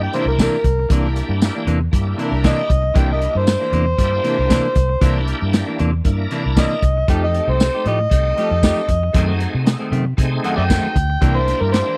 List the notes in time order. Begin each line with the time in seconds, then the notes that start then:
Already playing: A#3 D4 E4 G4
0.01 G5, muted clean electric guitar stroke
0.12 C3 E3 A#3 D4 E4 A#4 C5, snare, closed hi-hat
0.26 C2 A#4, muted clean electric guitar stroke
0.39 C3 E3 A#3 D4 A#4, kick, snare, closed hi-hat, tambourine
0.64 C2, muted clean electric guitar stroke, kick, closed hi-hat
0.79 muted clean electric guitar stroke
0.89 C2 C3 E3 A#3 D4 E4 G4 A#4, kick, closed hi-hat
1.16 muted clean electric guitar stroke, closed hi-hat
1.29 G2, muted clean electric guitar stroke
1.42 muted clean electric guitar stroke, snare, closed hi-hat, tambourine
1.55 E3 A#3 D4
1.67 E2 C3 E3 A#3 D4, closed hi-hat
1.80 muted clean electric guitar stroke
1.92 G2 A#3 D4 E4 G4, kick, closed hi-hat
2.07 muted clean electric guitar stroke
2.16 C3 E3 A#3 D4 E4 A#4, closed hi-hat
2.20 D4
2.32 C2, muted clean electric guitar stroke
2.44 C3 E3 A#3 D4 D#5, kick, snare, closed hi-hat, tambourine
2.69 C2, muted clean electric guitar stroke, kick, closed hi-hat
2.82 muted clean electric guitar stroke
2.94 C2 C3 E3 A#3 D4 E4 G4 A#4 G5, kick, closed hi-hat
3.12 D#5
3.21 muted clean electric guitar stroke, closed hi-hat
3.34 G2 C5, muted clean electric guitar stroke
3.46 muted clean electric guitar stroke, snare, closed hi-hat, tambourine
3.60 E3 A#3 D4
3.72 E2 C3 E3 A#3 D4 C5, closed hi-hat
3.87 muted clean electric guitar stroke
3.98 G2 A#3 D4 E4 G4, kick, closed hi-hat
4.12 muted clean electric guitar stroke
4.22 C3 E3 A#3 D4 E4 A#4, snare, closed hi-hat
4.38 C2, muted clean electric guitar stroke
4.49 C3 E3 A#3 D4, kick, snare, closed hi-hat, tambourine
4.75 C2, muted clean electric guitar stroke, kick, closed hi-hat
4.89 muted clean electric guitar stroke
5.01 C2 C3 E3 A#3 D4 E4 G4 A#4, kick, closed hi-hat
5.27 muted clean electric guitar stroke, closed hi-hat
5.41 G2, muted clean electric guitar stroke
5.53 muted clean electric guitar stroke, snare, closed hi-hat, tambourine
5.66 E3 A#3 D4
5.79 E2 C3 E3 A#3 D4, closed hi-hat
5.92 muted clean electric guitar stroke
6.04 G2 A#3 D4 E4 A#4, kick, closed hi-hat
6.19 muted clean electric guitar stroke
6.29 C3 E3 A#3 D4 E4, snare, closed hi-hat
6.45 C2, muted clean electric guitar stroke
6.57 C3 E3 A#3 D4 D#5, kick, snare, closed hi-hat, tambourine
6.82 C2, muted clean electric guitar stroke, kick, closed hi-hat
6.97 muted clean electric guitar stroke
7.08 F2 F3 A3 C4 D#4 G4 A4 G5, kick, closed hi-hat
7.24 D#5
7.34 muted clean electric guitar stroke, closed hi-hat
7.48 C2 C5, muted clean electric guitar stroke
7.60 muted clean electric guitar stroke, snare, closed hi-hat, tambourine
7.74 A3 D#4 G4
7.85 A2 F3 A3 D#4 G4 D#5, closed hi-hat
8.01 muted clean electric guitar stroke
8.10 C2 A3 C4 D#4 G4, kick, closed hi-hat
8.26 muted clean electric guitar stroke
8.36 F3 A3 D#4 G4 A4, snare, closed hi-hat
8.51 F2, muted clean electric guitar stroke
8.63 F3 A3 D#4 G4, kick, snare, closed hi-hat, tambourine
8.88 F2, muted clean electric guitar stroke, kick, closed hi-hat
9.03 muted clean electric guitar stroke
9.13 F#2 D#3 A3 C4 D#4 F#4 G#4, kick, closed hi-hat
9.40 muted clean electric guitar stroke, closed hi-hat
9.54 C3, muted clean electric guitar stroke
9.66 muted clean electric guitar stroke, snare, closed hi-hat, tambourine
9.80 D#3 A3 C4
9.91 F#2 C3 D#3 A3 C4, closed hi-hat
10.06 muted clean electric guitar stroke
10.17 C3 A3 C4 D#4 G#4, kick, closed hi-hat
10.32 muted clean electric guitar stroke
10.42 F#2 D#3 A3 C4 D#4 F#4 F#5, closed hi-hat
10.57 F#2 D5 E5 G5, muted clean electric guitar stroke
10.70 F#2 D#3 A3 C4, kick, snare, closed hi-hat, tambourine
10.96 D2, muted clean electric guitar stroke, kick, closed hi-hat
11.10 muted clean electric guitar stroke
11.20 C2 C3 E3 A#3 D4 E4 G4 A#4, kick, closed hi-hat
11.36 C5
11.47 muted clean electric guitar stroke, snare, closed hi-hat
11.60 G2 A#4, muted clean electric guitar stroke
11.72 C5, muted clean electric guitar stroke, snare, closed hi-hat, tambourine
11.86 E3 A#3 D4